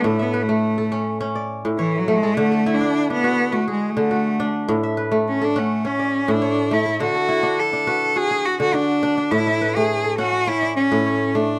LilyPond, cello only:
\new Staff \with { instrumentName = "Cello" } { \time 4/4 \key d \lydian \tempo 4 = 104 \tuplet 3/2 { a8 b8 a8~ } a4~ a16 r8. \tuplet 3/2 { e8 fis8 gis8 } | \tuplet 3/2 { a4 d'8~ d'8 b4 a8 gis8 a8~ } a4~ | a16 r8. cis'16 d'16 a8 cis'8. d'8. e'8 | fis'4 a'4 gis'8 fis'16 fis'16 d'4 |
e'8. gis'8. fis'8 e'8 cis'4 d'8 | }